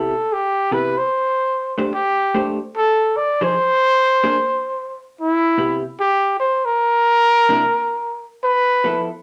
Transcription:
Already playing: hollow-body jazz guitar C3 B3 E4 G4, trumpet A4
0.33 trumpet G4
0.71 hollow-body jazz guitar C3 B3 E4 G4, trumpet B4
0.98 trumpet C5
1.78 hollow-body jazz guitar A3 D4 G4 C5
1.94 trumpet G4
2.34 hollow-body jazz guitar A3 D4 G4 C5
2.76 trumpet A4
3.17 trumpet D5
3.41 hollow-body jazz guitar F3 D#4 G#4 C5, trumpet C5
4.24 hollow-body jazz guitar A#3 D4 G#4 C5
5.19 trumpet E4
5.58 hollow-body jazz guitar C3 B3 E4 G4
6.00 trumpet G4
6.40 trumpet C5
6.65 trumpet A#4
7.49 hollow-body jazz guitar C3 A#3 D4 E4
8.44 trumpet B4
8.84 hollow-body jazz guitar F3 B3 E4 A4

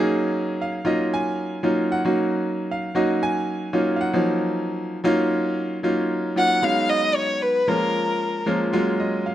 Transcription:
Already playing: grand piano F#3 A#3 C#4 D#4 G#4
0.62 grand piano F5
0.85 grand piano F#3 A#3 C#4 D#4 F4 D#5
1.14 grand piano G#5
1.63 grand piano F#3 A#3 C#4 D#4 F4
1.92 grand piano F#5
2.05 grand piano F#3 A#3 C#4 D#4 F#4
2.71 grand piano F5
2.95 grand piano F#3 A#3 C#4 D#4 F#4 D#5
3.23 grand piano G#5
3.73 grand piano F#3 A#3 C#4 D#4 F4
3.96 grand piano F5
4.01 grand piano F#5
4.13 grand piano F3 F#3 A#3 C#4 D#4
5.04 grand piano F#3 A#3 C#4 D#4 F4
5.83 grand piano F#3 A#3 C#4 D#4 F4
6.36 grand piano F#3 A#3 C#4 D#4 F4, violin F#5
6.62 grand piano F#3 G#3 B3 C#4 D#4, violin F5
6.90 violin D#5
7.15 violin C#5
7.42 violin B4
7.68 grand piano F3 G#3 A#3 C#4 F4, violin A#4
8.46 grand piano F3 G#3 A#3 C#4 F4
8.73 grand piano F#3 G#3 A#3 C#4 F4 C#5
9.00 grand piano D#5
9.26 grand piano F5

